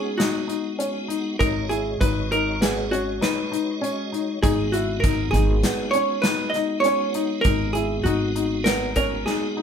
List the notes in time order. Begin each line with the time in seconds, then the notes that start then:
Already playing: G#3 B3 D#4 F#4 G#4
0.18 D#4 F#4, snare, closed hi-hat
0.48 D#4, closed hi-hat
0.79 C#4, closed hi-hat
1.08 D#4, closed hi-hat
1.39 G#1 G#3 D#4 F#4 A#4 C#5 D#5, kick, closed hi-hat
1.69 E4 G#4, closed hi-hat
2.00 G#1 D#4 B4, kick, closed hi-hat
2.32 D#4 A#4, closed hi-hat
2.61 B3 G#4, snare, closed hi-hat
2.91 C#4 F#4, closed hi-hat
3.21 D#4 B4, snare, closed hi-hat
3.52 D#4, closed hi-hat
3.82 C#4, closed hi-hat
4.12 D#4, closed hi-hat
4.42 G#1 G#3 B3 D#4 F#4 G#4, kick, closed hi-hat
4.72 E4 F#4, closed hi-hat
5.00 G#1 A#4, kick, closed hi-hat
5.04 D#4
5.31 G#1 D#4 G#4, snare, closed hi-hat
5.63 B3, snare, closed hi-hat
5.91 C#4 C#5, closed hi-hat
6.22 D#4 B4, snare, closed hi-hat
6.50 D#5
6.54 D#4, snare, closed hi-hat
6.80 C#5, snare, closed hi-hat
6.85 C#4
7.14 D#4, closed hi-hat
7.41 G#1 G#3 D#4 F#4 A#4, kick, closed hi-hat
7.45 B3 D#4
7.73 E4 G#4, closed hi-hat
8.04 G#1 D#4 F#4, closed hi-hat
8.36 D#4, closed hi-hat
8.64 B3 A#4, snare, closed hi-hat
8.96 C#4 A#4, kick, closed hi-hat
9.26 D#4 G#4, snare
9.57 D#4